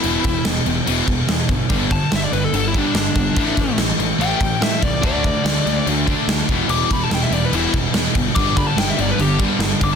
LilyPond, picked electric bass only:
\new Staff \with { instrumentName = "Picked electric bass" } { \clef bass \time 4/4 \key e \minor \tempo 4 = 144 e,,8 e,,8 e,,8 e,,8 e,,8 e,,8 e,8 g,,8 | g,,4 g,,8 g,,8 g,,4 g,,8 g,,8 | a,,8 a,,8 a,,8 a,,8 a,,8 a,,8 a,8 c,8 | d,4 d,8 d,8 d,4 d,8 e,,8 |
e,,8 e,,8 e,,8 e,,8 e,,8 e,,8 e,8 g,,8 | g,,4 g,,8 g,,8 g,,4 g,,8 g,,8 | }